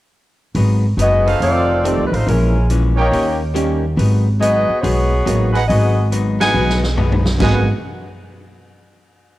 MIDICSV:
0, 0, Header, 1, 8, 480
1, 0, Start_track
1, 0, Key_signature, 5, "minor"
1, 0, Tempo, 428571
1, 618, Time_signature, 4, 2, 24, 8
1, 10513, End_track
2, 0, Start_track
2, 0, Title_t, "Trumpet section"
2, 0, Program_c, 0, 61
2, 1408, Note_on_c, 0, 63, 81
2, 1410, Note_on_c, 0, 77, 88
2, 1411, Note_on_c, 0, 72, 74
2, 1413, Note_on_c, 0, 69, 77
2, 2026, Note_off_c, 0, 63, 0
2, 2027, Note_off_c, 0, 77, 0
2, 2028, Note_off_c, 0, 72, 0
2, 2029, Note_off_c, 0, 69, 0
2, 3317, Note_on_c, 0, 73, 71
2, 3318, Note_on_c, 0, 63, 76
2, 3319, Note_on_c, 0, 70, 71
2, 3321, Note_on_c, 0, 79, 84
2, 3437, Note_off_c, 0, 73, 0
2, 3438, Note_off_c, 0, 63, 0
2, 3438, Note_off_c, 0, 70, 0
2, 3440, Note_off_c, 0, 79, 0
2, 6201, Note_on_c, 0, 68, 79
2, 6202, Note_on_c, 0, 63, 85
2, 6203, Note_on_c, 0, 78, 91
2, 6205, Note_on_c, 0, 71, 77
2, 6318, Note_off_c, 0, 63, 0
2, 6318, Note_off_c, 0, 68, 0
2, 6319, Note_off_c, 0, 78, 0
2, 6320, Note_off_c, 0, 71, 0
2, 7163, Note_on_c, 0, 78, 80
2, 7167, Note_on_c, 0, 71, 68
2, 7168, Note_on_c, 0, 68, 66
2, 7170, Note_on_c, 0, 63, 72
2, 7278, Note_off_c, 0, 78, 0
2, 7281, Note_off_c, 0, 68, 0
2, 7281, Note_off_c, 0, 71, 0
2, 7282, Note_off_c, 0, 63, 0
2, 8287, Note_on_c, 0, 63, 71
2, 8290, Note_on_c, 0, 71, 67
2, 8291, Note_on_c, 0, 78, 77
2, 8293, Note_on_c, 0, 68, 72
2, 8502, Note_off_c, 0, 63, 0
2, 8504, Note_off_c, 0, 71, 0
2, 8505, Note_off_c, 0, 78, 0
2, 8506, Note_off_c, 0, 68, 0
2, 10513, End_track
3, 0, Start_track
3, 0, Title_t, "Saxophone section"
3, 0, Program_c, 1, 65
3, 1137, Note_on_c, 1, 66, 80
3, 1140, Note_on_c, 1, 59, 82
3, 1140, Note_on_c, 1, 68, 79
3, 1140, Note_on_c, 1, 75, 93
3, 1568, Note_off_c, 1, 66, 0
3, 1569, Note_off_c, 1, 59, 0
3, 1569, Note_off_c, 1, 68, 0
3, 1570, Note_off_c, 1, 75, 0
3, 1600, Note_on_c, 1, 69, 79
3, 1603, Note_on_c, 1, 60, 81
3, 1607, Note_on_c, 1, 65, 76
3, 1610, Note_on_c, 1, 74, 98
3, 2263, Note_off_c, 1, 69, 0
3, 2265, Note_off_c, 1, 60, 0
3, 2267, Note_off_c, 1, 65, 0
3, 2268, Note_off_c, 1, 74, 0
3, 2316, Note_on_c, 1, 71, 57
3, 2386, Note_off_c, 1, 71, 0
3, 2388, Note_on_c, 1, 63, 66
3, 2396, Note_on_c, 1, 65, 65
3, 2396, Note_on_c, 1, 72, 75
3, 2400, Note_on_c, 1, 57, 67
3, 2549, Note_off_c, 1, 63, 0
3, 2553, Note_off_c, 1, 65, 0
3, 2553, Note_off_c, 1, 72, 0
3, 2555, Note_off_c, 1, 57, 0
3, 2557, Note_on_c, 1, 70, 69
3, 2558, Note_on_c, 1, 56, 62
3, 2559, Note_on_c, 1, 61, 62
3, 2560, Note_on_c, 1, 64, 61
3, 3031, Note_off_c, 1, 56, 0
3, 3031, Note_off_c, 1, 70, 0
3, 3032, Note_off_c, 1, 61, 0
3, 3033, Note_off_c, 1, 64, 0
3, 3346, Note_on_c, 1, 58, 85
3, 3348, Note_on_c, 1, 63, 80
3, 3352, Note_on_c, 1, 67, 84
3, 3356, Note_on_c, 1, 73, 94
3, 3789, Note_off_c, 1, 58, 0
3, 3790, Note_off_c, 1, 63, 0
3, 3792, Note_off_c, 1, 67, 0
3, 3794, Note_off_c, 1, 73, 0
3, 4941, Note_on_c, 1, 75, 92
3, 4942, Note_on_c, 1, 66, 81
3, 4942, Note_on_c, 1, 68, 84
3, 4944, Note_on_c, 1, 59, 86
3, 5338, Note_off_c, 1, 66, 0
3, 5338, Note_off_c, 1, 68, 0
3, 5338, Note_off_c, 1, 75, 0
3, 5339, Note_off_c, 1, 59, 0
3, 5378, Note_on_c, 1, 72, 63
3, 5383, Note_on_c, 1, 66, 84
3, 5389, Note_on_c, 1, 73, 89
3, 5392, Note_on_c, 1, 68, 83
3, 5393, Note_on_c, 1, 59, 80
3, 5427, Note_off_c, 1, 72, 0
3, 6177, Note_off_c, 1, 66, 0
3, 6190, Note_on_c, 1, 66, 64
3, 6191, Note_on_c, 1, 56, 62
3, 6191, Note_on_c, 1, 71, 75
3, 6198, Note_off_c, 1, 73, 0
3, 6199, Note_off_c, 1, 68, 0
3, 6200, Note_off_c, 1, 59, 0
3, 6201, Note_on_c, 1, 63, 60
3, 6270, Note_off_c, 1, 56, 0
3, 6270, Note_off_c, 1, 66, 0
3, 6271, Note_off_c, 1, 71, 0
3, 6279, Note_off_c, 1, 63, 0
3, 6363, Note_on_c, 1, 68, 72
3, 6363, Note_on_c, 1, 75, 88
3, 6365, Note_on_c, 1, 66, 70
3, 6366, Note_on_c, 1, 59, 73
3, 6816, Note_off_c, 1, 68, 0
3, 6816, Note_off_c, 1, 75, 0
3, 6817, Note_off_c, 1, 66, 0
3, 6818, Note_off_c, 1, 59, 0
3, 7167, Note_on_c, 1, 66, 84
3, 7177, Note_on_c, 1, 71, 80
3, 7178, Note_on_c, 1, 75, 79
3, 7181, Note_on_c, 1, 80, 101
3, 7615, Note_off_c, 1, 66, 0
3, 7620, Note_off_c, 1, 71, 0
3, 7620, Note_off_c, 1, 75, 0
3, 7622, Note_off_c, 1, 80, 0
3, 8307, Note_on_c, 1, 80, 76
3, 8311, Note_on_c, 1, 66, 70
3, 8311, Note_on_c, 1, 75, 70
3, 8312, Note_on_c, 1, 71, 71
3, 8593, Note_off_c, 1, 80, 0
3, 8596, Note_off_c, 1, 66, 0
3, 8596, Note_off_c, 1, 71, 0
3, 8596, Note_off_c, 1, 75, 0
3, 10513, End_track
4, 0, Start_track
4, 0, Title_t, "Grand piano"
4, 0, Program_c, 2, 0
4, 2062, Note_on_c, 2, 55, 54
4, 2066, Note_on_c, 2, 60, 47
4, 2067, Note_on_c, 2, 57, 47
4, 2082, Note_on_c, 2, 63, 58
4, 2346, Note_off_c, 2, 55, 0
4, 2348, Note_off_c, 2, 57, 0
4, 2348, Note_off_c, 2, 60, 0
4, 2356, Note_off_c, 2, 63, 0
4, 3973, Note_on_c, 2, 55, 53
4, 3979, Note_on_c, 2, 58, 45
4, 3982, Note_on_c, 2, 61, 50
4, 3998, Note_on_c, 2, 63, 57
4, 4261, Note_off_c, 2, 55, 0
4, 4264, Note_off_c, 2, 58, 0
4, 4266, Note_off_c, 2, 61, 0
4, 4273, Note_off_c, 2, 63, 0
4, 5897, Note_on_c, 2, 58, 46
4, 5898, Note_on_c, 2, 54, 49
4, 5909, Note_on_c, 2, 59, 44
4, 5912, Note_on_c, 2, 63, 52
4, 6181, Note_off_c, 2, 54, 0
4, 6181, Note_off_c, 2, 58, 0
4, 6187, Note_off_c, 2, 59, 0
4, 6189, Note_off_c, 2, 63, 0
4, 7171, Note_on_c, 2, 54, 49
4, 7182, Note_on_c, 2, 56, 45
4, 7186, Note_on_c, 2, 63, 55
4, 7192, Note_on_c, 2, 59, 45
4, 7783, Note_off_c, 2, 54, 0
4, 7789, Note_off_c, 2, 56, 0
4, 7790, Note_off_c, 2, 63, 0
4, 7793, Note_off_c, 2, 59, 0
4, 8291, Note_on_c, 2, 54, 56
4, 8293, Note_on_c, 2, 58, 51
4, 8296, Note_on_c, 2, 56, 52
4, 8301, Note_on_c, 2, 59, 53
4, 8303, Note_on_c, 2, 63, 65
4, 8576, Note_off_c, 2, 54, 0
4, 8577, Note_off_c, 2, 58, 0
4, 8578, Note_off_c, 2, 56, 0
4, 8581, Note_off_c, 2, 59, 0
4, 8582, Note_off_c, 2, 63, 0
4, 10513, End_track
5, 0, Start_track
5, 0, Title_t, "Hollow-body jazz guitar"
5, 0, Program_c, 3, 26
5, 613, Note_on_c, 3, 44, 46
5, 620, Note_on_c, 3, 54, 55
5, 625, Note_on_c, 3, 59, 57
5, 633, Note_on_c, 3, 63, 54
5, 948, Note_off_c, 3, 44, 0
5, 951, Note_off_c, 3, 54, 0
5, 954, Note_off_c, 3, 59, 0
5, 958, Note_off_c, 3, 63, 0
5, 1095, Note_on_c, 3, 54, 57
5, 1100, Note_on_c, 3, 44, 55
5, 1108, Note_on_c, 3, 59, 62
5, 1114, Note_on_c, 3, 63, 59
5, 1429, Note_off_c, 3, 54, 0
5, 1432, Note_off_c, 3, 44, 0
5, 1436, Note_off_c, 3, 59, 0
5, 1439, Note_off_c, 3, 63, 0
5, 1585, Note_on_c, 3, 41, 44
5, 1588, Note_on_c, 3, 51, 45
5, 1598, Note_on_c, 3, 57, 44
5, 1610, Note_on_c, 3, 60, 48
5, 1915, Note_off_c, 3, 41, 0
5, 1916, Note_off_c, 3, 51, 0
5, 1922, Note_off_c, 3, 57, 0
5, 1927, Note_off_c, 3, 60, 0
5, 2054, Note_on_c, 3, 51, 55
5, 2056, Note_on_c, 3, 41, 56
5, 2066, Note_on_c, 3, 60, 62
5, 2067, Note_on_c, 3, 57, 59
5, 2390, Note_off_c, 3, 51, 0
5, 2391, Note_off_c, 3, 41, 0
5, 2396, Note_off_c, 3, 57, 0
5, 2396, Note_off_c, 3, 60, 0
5, 2538, Note_on_c, 3, 46, 42
5, 2548, Note_on_c, 3, 52, 48
5, 2552, Note_on_c, 3, 56, 47
5, 2564, Note_on_c, 3, 61, 48
5, 2872, Note_off_c, 3, 46, 0
5, 2877, Note_off_c, 3, 52, 0
5, 2879, Note_off_c, 3, 56, 0
5, 2885, Note_off_c, 3, 61, 0
5, 3023, Note_on_c, 3, 46, 58
5, 3032, Note_on_c, 3, 61, 60
5, 3033, Note_on_c, 3, 52, 62
5, 3034, Note_on_c, 3, 56, 58
5, 3355, Note_off_c, 3, 46, 0
5, 3359, Note_off_c, 3, 52, 0
5, 3359, Note_off_c, 3, 61, 0
5, 3360, Note_off_c, 3, 56, 0
5, 3487, Note_on_c, 3, 51, 45
5, 3496, Note_on_c, 3, 58, 48
5, 3505, Note_on_c, 3, 61, 53
5, 3512, Note_on_c, 3, 67, 52
5, 3826, Note_off_c, 3, 51, 0
5, 3831, Note_off_c, 3, 58, 0
5, 3836, Note_off_c, 3, 61, 0
5, 3839, Note_off_c, 3, 67, 0
5, 3963, Note_on_c, 3, 51, 66
5, 3970, Note_on_c, 3, 58, 64
5, 3975, Note_on_c, 3, 67, 67
5, 3979, Note_on_c, 3, 61, 71
5, 4304, Note_off_c, 3, 51, 0
5, 4308, Note_off_c, 3, 58, 0
5, 4310, Note_off_c, 3, 67, 0
5, 4312, Note_off_c, 3, 61, 0
5, 4441, Note_on_c, 3, 44, 47
5, 4449, Note_on_c, 3, 54, 53
5, 4451, Note_on_c, 3, 59, 60
5, 4465, Note_on_c, 3, 63, 58
5, 4782, Note_off_c, 3, 44, 0
5, 4787, Note_off_c, 3, 54, 0
5, 4788, Note_off_c, 3, 59, 0
5, 4795, Note_off_c, 3, 63, 0
5, 4922, Note_on_c, 3, 44, 55
5, 4931, Note_on_c, 3, 54, 60
5, 4938, Note_on_c, 3, 59, 56
5, 4940, Note_on_c, 3, 63, 59
5, 5262, Note_off_c, 3, 44, 0
5, 5267, Note_off_c, 3, 54, 0
5, 5271, Note_off_c, 3, 59, 0
5, 5272, Note_off_c, 3, 63, 0
5, 5407, Note_on_c, 3, 44, 48
5, 5415, Note_on_c, 3, 59, 51
5, 5417, Note_on_c, 3, 54, 52
5, 5428, Note_on_c, 3, 63, 49
5, 5745, Note_off_c, 3, 44, 0
5, 5748, Note_off_c, 3, 59, 0
5, 5749, Note_off_c, 3, 54, 0
5, 5755, Note_off_c, 3, 63, 0
5, 5881, Note_on_c, 3, 44, 56
5, 5885, Note_on_c, 3, 54, 59
5, 5889, Note_on_c, 3, 63, 62
5, 5892, Note_on_c, 3, 59, 62
5, 6221, Note_off_c, 3, 44, 0
5, 6223, Note_off_c, 3, 54, 0
5, 6225, Note_off_c, 3, 63, 0
5, 6226, Note_off_c, 3, 59, 0
5, 6370, Note_on_c, 3, 44, 44
5, 6376, Note_on_c, 3, 54, 50
5, 6381, Note_on_c, 3, 59, 51
5, 6390, Note_on_c, 3, 63, 52
5, 6705, Note_off_c, 3, 44, 0
5, 6708, Note_off_c, 3, 54, 0
5, 6710, Note_off_c, 3, 59, 0
5, 6715, Note_off_c, 3, 63, 0
5, 6847, Note_on_c, 3, 44, 51
5, 6853, Note_on_c, 3, 54, 56
5, 6859, Note_on_c, 3, 59, 59
5, 6866, Note_on_c, 3, 63, 63
5, 7182, Note_off_c, 3, 44, 0
5, 7186, Note_off_c, 3, 54, 0
5, 7189, Note_off_c, 3, 59, 0
5, 7192, Note_off_c, 3, 63, 0
5, 7327, Note_on_c, 3, 44, 46
5, 7333, Note_on_c, 3, 54, 49
5, 7343, Note_on_c, 3, 59, 48
5, 7354, Note_on_c, 3, 63, 50
5, 7662, Note_off_c, 3, 44, 0
5, 7665, Note_off_c, 3, 54, 0
5, 7670, Note_off_c, 3, 59, 0
5, 7676, Note_off_c, 3, 63, 0
5, 7810, Note_on_c, 3, 54, 62
5, 7813, Note_on_c, 3, 44, 67
5, 7819, Note_on_c, 3, 59, 66
5, 7825, Note_on_c, 3, 63, 67
5, 8144, Note_off_c, 3, 54, 0
5, 8145, Note_off_c, 3, 44, 0
5, 8148, Note_off_c, 3, 59, 0
5, 8151, Note_off_c, 3, 63, 0
5, 8268, Note_on_c, 3, 44, 66
5, 8284, Note_on_c, 3, 54, 58
5, 8292, Note_on_c, 3, 59, 63
5, 8298, Note_on_c, 3, 63, 65
5, 8533, Note_off_c, 3, 44, 0
5, 8541, Note_off_c, 3, 54, 0
5, 8545, Note_off_c, 3, 59, 0
5, 8548, Note_off_c, 3, 63, 0
5, 10513, End_track
6, 0, Start_track
6, 0, Title_t, "Upright bass"
6, 0, Program_c, 4, 32
6, 613, Note_on_c, 4, 32, 80
6, 1064, Note_off_c, 4, 32, 0
6, 1086, Note_on_c, 4, 30, 68
6, 1541, Note_off_c, 4, 30, 0
6, 1569, Note_on_c, 4, 29, 76
6, 2172, Note_off_c, 4, 29, 0
6, 2214, Note_on_c, 4, 36, 61
6, 2368, Note_off_c, 4, 36, 0
6, 2374, Note_on_c, 4, 33, 64
6, 2528, Note_off_c, 4, 33, 0
6, 2538, Note_on_c, 4, 34, 86
6, 3457, Note_off_c, 4, 34, 0
6, 3486, Note_on_c, 4, 39, 79
6, 4410, Note_off_c, 4, 39, 0
6, 4448, Note_on_c, 4, 32, 81
6, 5204, Note_off_c, 4, 32, 0
6, 5413, Note_on_c, 4, 35, 80
6, 5862, Note_off_c, 4, 35, 0
6, 5894, Note_on_c, 4, 33, 64
6, 6342, Note_off_c, 4, 33, 0
6, 6378, Note_on_c, 4, 32, 85
6, 7292, Note_off_c, 4, 32, 0
6, 7329, Note_on_c, 4, 35, 75
6, 8247, Note_off_c, 4, 35, 0
6, 8292, Note_on_c, 4, 32, 87
6, 8585, Note_off_c, 4, 32, 0
6, 10513, End_track
7, 0, Start_track
7, 0, Title_t, "Muted upright bass strokes"
7, 5247, Note_on_c, 9, 29, 36
7, 5359, Note_off_c, 9, 29, 0
7, 10513, End_track
8, 0, Start_track
8, 0, Title_t, "Drums"
8, 614, Note_on_c, 9, 46, 43
8, 726, Note_off_c, 9, 46, 0
8, 1107, Note_on_c, 9, 42, 50
8, 1219, Note_off_c, 9, 42, 0
8, 1428, Note_on_c, 9, 46, 35
8, 1540, Note_off_c, 9, 46, 0
8, 1589, Note_on_c, 9, 46, 44
8, 1701, Note_off_c, 9, 46, 0
8, 2073, Note_on_c, 9, 42, 50
8, 2185, Note_off_c, 9, 42, 0
8, 2392, Note_on_c, 9, 46, 36
8, 2504, Note_off_c, 9, 46, 0
8, 2557, Note_on_c, 9, 46, 44
8, 2669, Note_off_c, 9, 46, 0
8, 3021, Note_on_c, 9, 42, 50
8, 3133, Note_off_c, 9, 42, 0
8, 3508, Note_on_c, 9, 46, 41
8, 3620, Note_off_c, 9, 46, 0
8, 3984, Note_on_c, 9, 42, 50
8, 4096, Note_off_c, 9, 42, 0
8, 4468, Note_on_c, 9, 46, 42
8, 4580, Note_off_c, 9, 46, 0
8, 4953, Note_on_c, 9, 42, 55
8, 5065, Note_off_c, 9, 42, 0
8, 5420, Note_on_c, 9, 46, 42
8, 5532, Note_off_c, 9, 46, 0
8, 5903, Note_on_c, 9, 42, 49
8, 6015, Note_off_c, 9, 42, 0
8, 6219, Note_on_c, 9, 46, 36
8, 6331, Note_off_c, 9, 46, 0
8, 6383, Note_on_c, 9, 46, 46
8, 6495, Note_off_c, 9, 46, 0
8, 6856, Note_on_c, 9, 42, 54
8, 6968, Note_off_c, 9, 42, 0
8, 7177, Note_on_c, 9, 38, 72
8, 7179, Note_on_c, 9, 51, 61
8, 7289, Note_off_c, 9, 38, 0
8, 7291, Note_off_c, 9, 51, 0
8, 7501, Note_on_c, 9, 38, 49
8, 7613, Note_off_c, 9, 38, 0
8, 7656, Note_on_c, 9, 38, 60
8, 7768, Note_off_c, 9, 38, 0
8, 7814, Note_on_c, 9, 43, 60
8, 7926, Note_off_c, 9, 43, 0
8, 7976, Note_on_c, 9, 43, 64
8, 8088, Note_off_c, 9, 43, 0
8, 8126, Note_on_c, 9, 38, 75
8, 8238, Note_off_c, 9, 38, 0
8, 8288, Note_on_c, 9, 38, 75
8, 8288, Note_on_c, 9, 49, 78
8, 8293, Note_on_c, 9, 36, 85
8, 8400, Note_off_c, 9, 38, 0
8, 8400, Note_off_c, 9, 49, 0
8, 8405, Note_off_c, 9, 36, 0
8, 10513, End_track
0, 0, End_of_file